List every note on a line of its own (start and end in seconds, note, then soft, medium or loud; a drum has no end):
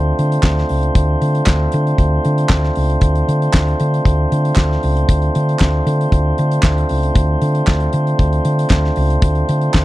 0.00 0.11 D2 loud
0.00 9.85 A3 medium
0.00 9.85 C4 medium
0.00 9.85 D4 medium
0.00 9.85 F4 medium
0.00 9.85 C5 medium
0.19 0.37 D3 medium
0.19 closed hi-hat medium
0.32 closed hi-hat soft
0.43 0.62 D2 loud
0.43 kick loud
0.43 snare loud
0.43 clap medium
0.58 snare soft
0.69 0.89 C#2 medium
0.69 open hi-hat medium
0.83 closed hi-hat soft
0.95 1.14 D2 loud
0.95 kick loud
0.95 closed hi-hat medium
1.22 1.40 D3 medium
1.22 closed hi-hat medium
1.35 closed hi-hat soft
1.46 1.66 D2 loud
1.46 kick loud
1.46 snare loud
1.46 clap medium
1.46 clap loud
1.72 1.92 D3 loud
1.72 closed hi-hat medium
1.87 closed hi-hat soft
1.98 2.17 D2 loud
1.98 kick medium
1.98 closed hi-hat medium
2.25 2.44 D3 medium
2.25 closed hi-hat medium
2.38 closed hi-hat soft
2.49 2.69 D2 medium
2.49 kick loud
2.49 snare loud
2.49 clap medium
2.64 snare soft
2.75 2.96 C#2 medium
2.75 open hi-hat medium
2.90 closed hi-hat soft
3.01 3.21 D2 loud
3.01 kick loud
3.01 closed hi-hat medium
3.15 closed hi-hat soft
3.28 3.47 D3 medium
3.28 closed hi-hat medium
3.42 closed hi-hat soft
3.53 3.73 D2 medium
3.53 kick loud
3.53 snare loud
3.53 clap medium
3.68 closed hi-hat soft
3.80 3.99 D3 medium
3.80 closed hi-hat medium
3.94 closed hi-hat soft
4.05 4.25 D2 loud
4.05 kick loud
4.05 closed hi-hat medium
4.32 4.51 D3 medium
4.32 closed hi-hat medium
4.45 closed hi-hat soft
4.56 4.76 D2 medium
4.56 kick loud
4.56 snare medium
4.56 clap medium
4.72 snare soft
4.83 5.03 C#2 medium
4.83 open hi-hat medium
4.97 closed hi-hat soft
5.09 5.28 D2 loud
5.09 kick loud
5.09 closed hi-hat medium
5.22 closed hi-hat soft
5.35 5.55 D3 loud
5.35 closed hi-hat medium
5.49 closed hi-hat soft
5.59 clap medium
5.61 5.80 D2 medium
5.61 kick loud
5.61 snare loud
5.61 clap medium
5.87 6.06 D3 loud
5.87 closed hi-hat medium
6.01 closed hi-hat soft
6.12 6.31 D2 loud
6.12 kick medium
6.12 closed hi-hat medium
6.38 6.58 D3 loud
6.38 closed hi-hat medium
6.51 closed hi-hat soft
6.63 6.83 D2 loud
6.63 kick loud
6.63 snare loud
6.63 clap loud
6.63 clap medium
6.78 closed hi-hat soft
6.89 7.10 C#2 medium
6.89 open hi-hat medium
7.03 closed hi-hat soft
7.15 7.35 D2 loud
7.15 kick loud
7.15 closed hi-hat medium
7.42 7.61 D3 loud
7.42 closed hi-hat medium
7.55 closed hi-hat soft
7.67 7.87 D2 medium
7.67 kick loud
7.67 snare loud
7.67 clap medium
7.80 closed hi-hat soft
7.93 8.13 D3 loud
7.93 closed hi-hat medium
8.07 closed hi-hat soft
8.19 8.38 D2 loud
8.19 kick loud
8.19 closed hi-hat medium
8.33 closed hi-hat soft
8.45 8.64 D3 medium
8.45 closed hi-hat medium
8.59 closed hi-hat medium
8.70 8.90 D2 medium
8.70 kick loud
8.70 snare loud
8.70 clap medium
8.85 snare soft
8.96 9.16 C#2 medium
8.96 open hi-hat medium
9.10 closed hi-hat soft
9.22 9.42 D2 loud
9.22 kick loud
9.22 closed hi-hat medium
9.35 closed hi-hat soft
9.49 9.68 D3 loud
9.49 closed hi-hat medium
9.61 closed hi-hat soft
9.74 9.85 D2 medium
9.74 kick loud
9.74 snare loud
9.74 clap medium